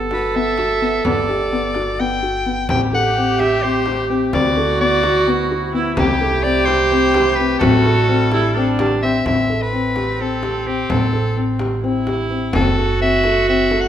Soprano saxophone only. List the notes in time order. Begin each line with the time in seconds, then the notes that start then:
0.13 B4
0.36 E5
1.05 D5
2.00 G5
2.70 G5
2.94 F#5
3.40 E5
3.62 C5
4.34 D5
4.80 D5
5.98 G4
6.43 D5
6.65 C5
7.35 B4
7.59 A4
9.02 E5
9.27 E5
9.62 B4
10.21 A4
10.67 G4
10.90 A4
12.55 A4
13.02 E5
13.49 E5
13.81 F#5